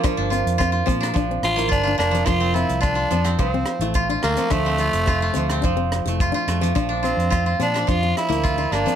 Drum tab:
HH |x-xxx-xxx-xxx-xx|x-xxx-xxx-xxx-xx|x-xxx-xxx-xxx-xx|x-xxx-xxx-xxx-xx|
SD |r---r--r--r---r-|r---r--r--r---r-|r---r--r--r---r-|r---r--r--r---r-|
BD |o---o-o-o---o---|o---o---o---o---|o---o---o---o---|o---o---o---o---|